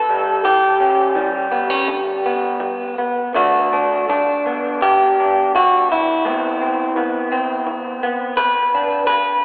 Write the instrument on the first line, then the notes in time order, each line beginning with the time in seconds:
clean electric guitar
Already playing: A2 A4
0.09 G3
0.44 E3 G4
0.80 C#4
1.15 E3 G3
1.52 B3
1.70 C#4
1.88 D3
2.26 B3
2.60 G3
2.98 B3
3.35 D3 A3 D4 F#4
3.73 D4
4.09 G2 D4
4.46 B3
4.81 D3 G4
5.20 D4
5.55 D3 F#4
5.92 E4
6.25 A2 B3 C4
6.61 C4
6.96 E3 B3
7.32 C4
7.67 E3
8.03 B3
8.37 E2 B4
8.74 D4
9.07 G3 B4